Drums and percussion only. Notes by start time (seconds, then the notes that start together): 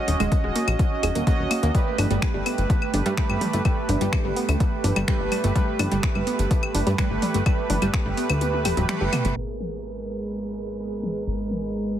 0.08 open hi-hat
0.20 closed hi-hat, claves
0.32 kick, closed hi-hat
0.56 open hi-hat
0.68 closed hi-hat, claves
0.79 kick, closed hi-hat
1.03 open hi-hat, claves
1.15 closed hi-hat
1.27 kick, closed hi-hat
1.51 open hi-hat, claves
1.63 closed hi-hat
1.75 kick, closed hi-hat
1.98 open hi-hat, mid tom, claves
2.11 closed hi-hat
2.22 finger snap, kick, closed hi-hat
2.46 open hi-hat, claves
2.58 closed hi-hat
2.70 kick, closed hi-hat
2.82 claves
2.94 open hi-hat
3.06 closed hi-hat
3.17 finger snap, kick, closed hi-hat
3.30 claves
3.41 open hi-hat, mid tom
3.53 closed hi-hat
3.65 kick, closed hi-hat, claves
3.89 open hi-hat, mid tom
4.01 closed hi-hat
4.13 finger snap, kick, closed hi-hat, claves
4.36 open hi-hat
4.49 closed hi-hat, claves
4.60 kick, closed hi-hat
4.84 open hi-hat, mid tom
4.96 closed hi-hat, claves
5.08 finger snap, kick, closed hi-hat
5.32 open hi-hat, claves
5.44 closed hi-hat
5.56 kick, closed hi-hat
5.79 open hi-hat, mid tom, claves
5.92 closed hi-hat
6.03 finger snap, kick, closed hi-hat
6.15 claves
6.27 open hi-hat
6.39 closed hi-hat
6.51 kick, closed hi-hat
6.63 claves
6.75 open hi-hat
6.87 closed hi-hat
6.98 finger snap, kick, closed hi-hat, claves
7.22 open hi-hat, mid tom
7.34 closed hi-hat
7.46 kick, closed hi-hat, claves
7.70 open hi-hat, mid tom
7.82 closed hi-hat, claves
7.94 finger snap, kick, closed hi-hat
8.17 open hi-hat
8.30 closed hi-hat, claves
8.41 closed hi-hat, high tom
8.53 high tom
8.65 open hi-hat, mid tom, claves
8.77 closed hi-hat, mid tom
8.89 finger snap, closed hi-hat, mid tom
9.13 mid tom, open hi-hat, claves
9.25 closed hi-hat, mid tom
9.60 mid tom
11.03 mid tom
11.51 mid tom